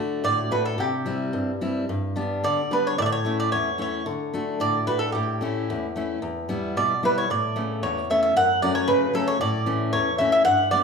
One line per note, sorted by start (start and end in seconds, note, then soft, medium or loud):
0.00 0.22 D3 medium
0.00 0.40 A3 soft
0.00 0.40 D4 soft
0.00 0.40 F#4 medium
0.24 0.78 A2 medium
0.24 0.50 D5 medium
0.51 0.74 A3 soft
0.51 0.73 D4 soft
0.51 0.74 F#4 soft
0.51 0.65 B4 medium
0.65 0.78 A4 medium
0.78 1.32 C3 medium
0.78 1.58 G4 medium
1.06 1.50 G3 medium
1.06 1.50 C4 soft
1.06 1.51 E4 medium
1.33 1.87 G2 medium
1.61 1.84 G3 soft
1.61 1.83 C4 soft
1.61 1.84 E4 medium
1.89 2.42 G2 medium
2.16 2.60 G3 medium
2.16 2.60 B3 soft
2.16 2.60 D4 medium
2.44 2.97 D3 medium
2.44 2.72 D5 medium
2.71 2.93 G3 soft
2.71 2.93 B3 soft
2.71 2.93 D4 medium
2.71 2.86 B4 medium
2.87 2.98 C#5 medium
2.98 3.52 A2 medium
2.98 3.02 D5 medium
2.98 3.06 E5 medium
3.06 3.12 D5 medium
3.12 3.38 C#5 medium
3.25 3.69 A3 medium
3.25 3.69 C#4 soft
3.25 3.70 E4 medium
3.40 3.52 D5 medium
3.52 4.06 E2 medium
3.52 3.78 C#5 medium
3.78 4.01 A3 soft
3.78 4.01 C#4 soft
3.78 4.01 E4 soft
3.78 4.06 C#5 medium
4.06 4.59 D3 medium
4.34 4.77 A3 medium
4.34 4.77 D4 soft
4.34 4.78 F#4 medium
4.60 5.13 A2 medium
4.60 4.86 D5 medium
4.87 5.09 A3 soft
4.87 5.10 D4 soft
4.87 5.10 F#4 soft
4.87 5.02 B4 medium
4.99 5.12 A4 medium
5.12 5.67 A2 medium
5.12 5.91 G4 medium
5.41 5.85 A3 soft
5.41 5.85 C#4 soft
5.41 5.85 E4 medium
5.70 6.21 E2 medium
5.96 6.18 A3 soft
5.96 6.18 C#4 soft
5.96 6.18 E4 medium
6.22 6.75 E2 medium
6.49 6.92 G3 medium
6.49 6.92 B3 soft
6.49 6.93 E4 medium
6.77 7.29 B2 medium
6.77 7.04 D5 medium
7.03 7.25 G3 soft
7.03 7.24 B3 soft
7.03 7.25 E4 medium
7.03 7.17 B4 medium
7.18 7.30 C#5 medium
7.30 7.82 A2 medium
7.30 8.06 D5 medium
7.56 7.99 C#3 medium
7.56 7.99 A3 soft
7.56 7.99 B3 soft
7.83 8.34 E2 medium
7.83 8.08 C#5 medium
8.10 8.31 A3 soft
8.10 8.31 B3 soft
8.10 8.32 C#4 soft
8.10 8.21 E5 medium
8.23 8.35 E5 medium
8.36 8.88 F#2 medium
8.36 8.61 F#5 loud
8.62 9.05 F#3 medium
8.62 9.05 A3 soft
8.62 9.05 C#4 medium
8.62 8.75 D5 medium
8.75 8.89 C#5 medium
8.88 9.39 C#3 medium
8.88 9.14 B4 medium
9.14 9.35 F#3 soft
9.14 9.36 A3 soft
9.14 9.36 C#4 medium
9.14 9.27 A4 medium
9.28 9.40 C#5 medium
9.41 9.93 A2 medium
9.41 9.90 D5 medium
9.66 10.09 E3 medium
9.66 10.09 A3 soft
9.66 10.09 C#4 medium
9.93 10.44 E2 medium
9.93 10.18 C#5 medium
10.18 10.40 E3 soft
10.18 10.41 A3 soft
10.18 10.41 C#4 medium
10.18 10.31 E5 medium
10.32 10.44 E5 medium
10.45 10.84 G2 medium
10.45 10.70 F#5 loud
10.71 10.84 G3 medium
10.71 10.84 B3 medium
10.71 10.84 D4 medium
10.71 10.84 D5 medium